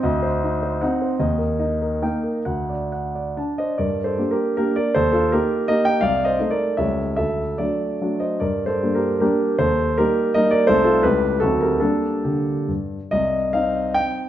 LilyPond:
<<
  \new Staff \with { instrumentName = "Grand piano" } { \time 3/4 \key g \minor \tempo 4 = 152 ees''8 c''8 ees''8 c''8 fis''8 c''8 | ees''8 bes'8 ees''8 bes'8 g''8 bes'8 | fis''8 d''8 fis''8 d''8 a''8 <c'' d'' ees''>8 | \tuplet 3/2 { <bes' d''>4 <a' c''>8~ <a' c''>8 <g' bes'>4 } <g' bes'>8 <bes' d''>8 |
<a' c''>8 <f' a'>8 <g' bes'>4 <bes' ees''>8 <ees'' g''>8 | \tuplet 3/2 { <d'' f''>4 <c'' ees''>8~ <c'' ees''>8 <bes' d''>4 } <cis'' e''>4 | <a' e''>4 <a' d''>4. <c'' ees''>8 | \tuplet 3/2 { <bes' d''>4 <a' c''>8~ <a' c''>8 <g' bes'>4 } <g' bes'>4 |
<a' c''>4 <g' bes'>4 <bes' ees''>8 <bes' d''>8 | <a' c''>8 <f' a'>8 <g' b'>4 <fis' a'>8 <g' bes'>8 | <d' a'>4 <d' g'>4 r4 | \key c \minor ees''4 f''4 g''4 | }
  \new Staff \with { instrumentName = "Grand piano" } { \time 3/4 \key g \minor d,4 ees'4 <c' ees'>4 | ees,4 ees'4 <bes ees'>4 | d,4 r4 d'4 | g,4 <bes d' g'>4 <bes d'>4 |
ees,4 <bes ees'>4 <bes ees' g'>4 | c,4 <a ees' a'>4 <cis, g a a'>4 | d,4 <fis a d'>4 <fis a d'>4 | g,4 <g bes d'>4 <g bes d'>4 |
ees,4 <g bes ees'>4 <g bes ees'>4 | <c, a ees'>4 <cis, g a e'>4 <d, fis c' ees'>4 | <g bes>4 d4 g,4 | \key c \minor c,4 <c' ees'>2 | }
>>